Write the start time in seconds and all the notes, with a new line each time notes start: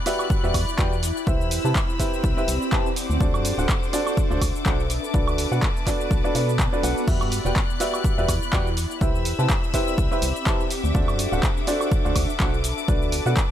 Already playing: B3 E4 D5 B5 F#6
0.06 F#4 G4 B4 D5 E5, open hi-hat, shaker
0.19 high woodblock, shaker
0.30 kick, shaker
0.44 E2 F#4 G4 B4 D5 E5, shaker
0.54 E2, kick, open hi-hat, high woodblock, shaker
0.68 shaker
0.79 E2 F#4 G4 B4 D5 G5, kick, clap, shaker
0.93 shaker
1.03 open hi-hat, shaker
1.17 shaker
1.27 C2 C4 E4 G4 B4 C5 E5 B5 E6, kick, shaker
1.40 E2, shaker
1.46 G4
1.51 open hi-hat, shaker
1.65 C3 E4 G4 B4 C5 A5, shaker
1.75 kick, clap, shaker
1.90 D5, shaker
1.99 E4 G4 B4 C5 E5, kick, open hi-hat, shaker
2.14 shaker
2.24 C2, kick, shaker
2.37 E4 G4 B4 C5 E5, shaker
2.48 C2, open hi-hat, shaker
2.62 shaker
2.72 E4 G4 B4 C5 A5, kick, clap, shaker
2.86 shaker
2.96 D4 C5 F#5 D6, open hi-hat, shaker
3.10 D2 A4, shaker
3.20 D2 D4 F#4 A4 C5 D5, kick, shaker
3.33 F#2 E5, high woodblock, shaker
3.45 open hi-hat, shaker
3.58 D1 D4 F#4 A4 C5 F#5, shaker
3.69 kick, clap, shaker
3.83 shaker
3.93 D4 F#4 A4 C5 D5, open hi-hat, shaker
4.07 high woodblock, shaker
4.17 kick, shaker
4.31 D2 D4 F#4 A4 C5 D5, shaker
4.41 D2, kick, open hi-hat, high woodblock, shaker
4.56 shaker
4.66 B1 D4 F#4 A4 C5 F#5, kick, clap, shaker
4.80 shaker
4.90 B3 B4 A5, open hi-hat, shaker
5.04 shaker
5.14 B1 D4 F#4 A4 B4 D5, kick, shaker
5.28 D2, high woodblock, shaker
5.38 B5, open hi-hat, shaker
5.52 B2 D4 F#4 A4 B4 F#5, shaker
5.62 kick, clap, shaker
5.77 shaker
5.87 D4 F#4 A4 B4 D5, kick, clap, open hi-hat, shaker
6.01 shaker
6.11 B1, kick, shaker
6.24 D4 F#4 A4 B4 D5, shaker
6.35 B2 D4 F#4 A4 B4 D5, open hi-hat, shaker
6.49 shaker
6.59 kick, clap, shaker
6.73 D4 F#4 A4 B4 D5, shaker
6.83 B1 D4 F#4 A4 B4 F#5, open hi-hat, shaker
6.98 shaker
7.08 E2 E4 F#4 G4 B4 D5 E5 F#6, kick, crash, shaker
7.21 G2, high woodblock, shaker
7.32 open hi-hat, shaker
7.45 E1 F#4 G4 B4 D5 G5, shaker
7.56 kick, clap, shaker
7.70 shaker
7.80 F#4 G4 B4 D5 E5, open hi-hat, shaker
7.94 high woodblock, shaker
8.04 kick, shaker
8.18 E2 F#4 G4 B4 D5 E5, shaker
8.29 E2, kick, open hi-hat, high woodblock, shaker
8.43 shaker
8.53 E2 F#4 G4 B4 D5 G5, kick, clap, shaker
8.67 shaker
8.77 open hi-hat, shaker
8.91 shaker
9.01 C2 C4 E4 G4 B4 C5 E5 B5 E6, kick, shaker
9.15 E2 D5, shaker
9.25 open hi-hat, shaker
9.33 G4
9.39 C3 E4 G4 B4 C5 A5, shaker
9.50 kick, clap, shaker
9.64 shaker
9.74 E4 G4 B4 C5 E5, kick, open hi-hat, shaker
9.88 shaker
9.98 C2, kick, shaker
10.11 E4 G4 B4 C5 E5, shaker
10.22 C2, open hi-hat, shaker
10.36 shaker
10.46 E4 G4 B4 C5 A5, kick, clap, shaker
10.60 shaker
10.70 D4 F#5 D6, open hi-hat, shaker
10.84 D2 A4, shaker
10.89 E5
10.95 D2 D4 F#4 A4 C5 D5, kick, shaker
11.08 F#2, high woodblock, shaker
11.19 open hi-hat, shaker
11.32 D1 D4 F#4 A4 C5 F#5, shaker
11.43 kick, clap, shaker
11.57 shaker
11.67 D4 F#4 A4 C5 D5, open hi-hat, shaker
11.81 high woodblock, shaker
11.92 kick, shaker
12.05 D2 D4 F#4 A4 C5 D5, shaker
12.16 D2, kick, open hi-hat, high woodblock, shaker
12.30 shaker
12.40 B1 D4 F#4 A4 C5 F#5, kick, clap, shaker
12.54 shaker
12.64 B3 B4 A5, open hi-hat, shaker
12.78 shaker
12.88 B1 D4 F#4 A4 B4 D5, kick, shaker
13.02 D2, shaker
13.11 B5, open hi-hat, shaker
13.26 B2 D4 F#4 A4 B4 F#5, shaker
13.37 kick, clap, shaker